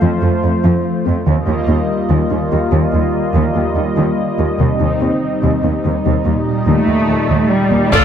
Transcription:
Already playing: F3 A3 F4 C5
0.01 F2 F3
0.22 F2 A3
0.44 F2 F4
0.64 F2 F3
1.06 F2 C4
1.27 D#2 D#3 G3 A#3 F4 D#5
1.47 D#2 G3
1.68 D#2 D#4
2.10 D#2 D#3
2.31 D#2 D#4
2.52 D#2 G3
2.72 D#2 D#3
2.93 D#2 G3
3.35 D#2 D#3
3.55 D#2 G3
3.76 D#2 D#4
3.97 D#2 D#3
4.39 D#2 A#3
4.59 D#2 C3 C4 D#4
4.80 D#2 D#3
5.01 D#2 C4
5.43 D#2 C3
5.63 D#2 C4
5.85 D#2 D#3
6.05 D#2 C3
6.26 D#2 A#2 G3 D#5
6.67 D#2 D#3 A3
6.88 D#2 G3
7.09 D#2 D#4
7.29 D#2 D#3
7.50 G3
7.71 D#2 A#3
7.92 D2 D3 F3 A3 F4 A4 D5, taiko, impact

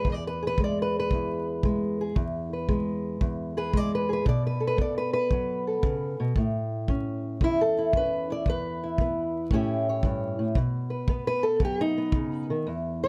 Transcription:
Already playing: G#3 G#4
0.05 E2, kick
0.12 D5
0.27 B4
0.42 G#4
0.47 B4
0.58 G#3, kick
0.64 D5
0.82 B4
0.99 B4
1.11 E2, kick
1.63 G#3, kick
2.01 G#4
2.15 E2, kick
2.53 B4
2.68 G#3, kick
3.21 E2, kick
3.57 G#4 B4
3.73 G#3 D5, kick
3.95 B4
4.09 G#4
4.13 B4
4.25 B2 D5, kick
4.47 B4
4.60 A4
4.67 B4
4.77 B3, kick
4.81 D5
4.98 B4
5.13 B4
5.31 F#3, kick
5.67 A4
5.82 C#3, kick
6.20 B2
6.36 A2, kick
6.88 C#4, kick
7.41 E2 E4, kick
7.61 A4
7.78 E4
7.93 C#4 B4, kick
8.30 E4 D5
8.46 E2 B4, kick
8.84 E4
8.98 B3, kick
9.51 A2 C#4 E4 G4, kick
9.55 C#5
9.89 C#5
10.03 G2, kick
10.39 A2
10.55 B2, kick
10.90 B4
11.08 B3, kick
11.27 B4
11.43 A4
11.60 F#3, kick
11.65 G4
11.81 D#4
11.98 B3
12.12 C#3, kick
12.50 D#3
12.67 E2
13.03 E4 D5

